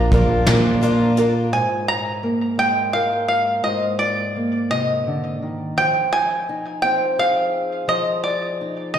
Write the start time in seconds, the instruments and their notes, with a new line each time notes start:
Already playing: twelve-string acoustic guitar A#3 D4 F4, ukulele D4 F4, five-string banjo A#5
0.12 picked electric bass A#1, twelve-string acoustic guitar F3 A#3 D4 F4, ukulele A#4, kick, closed hi-hat
0.47 picked electric bass A#2, twelve-string acoustic guitar A#2 F3 A#3 D4 F4, ukulele D4, snare, closed hi-hat
0.81 twelve-string acoustic guitar F3 A#3 D4 F4, ukulele F4, closed hi-hat
1.17 twelve-string acoustic guitar A#3 D4 F4, ukulele A#4, closed hi-hat
1.52 steel-string acoustic guitar G#2, five-string banjo G#5
1.88 five-string banjo A#5
2.23 steel-string acoustic guitar A#3
2.58 steel-string acoustic guitar G#3, five-string banjo G5
2.93 steel-string acoustic guitar A#4, five-string banjo F5
3.28 five-string banjo F5
3.64 steel-string acoustic guitar G#2, five-string banjo D#5
3.99 five-string banjo D5
4.36 steel-string acoustic guitar A#3
4.70 steel-string acoustic guitar C3, five-string banjo D#5
5.07 steel-string acoustic guitar D3
5.42 steel-string acoustic guitar D#3
5.78 steel-string acoustic guitar F3, five-string banjo G5
6.13 five-string banjo G#5
6.49 steel-string acoustic guitar D#4
6.82 steel-string acoustic guitar C4, five-string banjo G5
7.19 steel-string acoustic guitar G#4, five-string banjo F5
7.88 steel-string acoustic guitar F3, five-string banjo D#5
8.24 five-string banjo D5
8.61 steel-string acoustic guitar D#4
8.94 steel-string acoustic guitar D#3, five-string banjo D#5